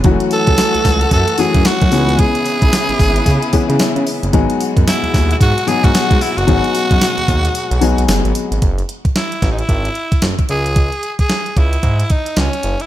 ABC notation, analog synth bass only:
X:1
M:4/4
L:1/16
Q:"Swing 16ths" 1/4=112
K:C#m
V:1 name="Analog synth bass" clef=bass
F,,, z2 C,, z C,, C,,2 F,, z F,, F,, z F,, C,,2- | C,, z2 B,,, z G,,, G,,,2 C, z C, C, z C, z F,,, | G,,, z2 F,, z D,, D,,2 G,, z G,, G,, z G,, z F,,, | G,,, z2 F,, z D,, D,,2 z B,,, B,,, B,,, F,,, G,,, z G,,, |
F,,,2 z A,,, z2 A,,,2 G,,,2 z2 F,,, z C,,2- | C,,2 z C,, z2 C,,2 G,,2 z2 C,, z F,,, z |]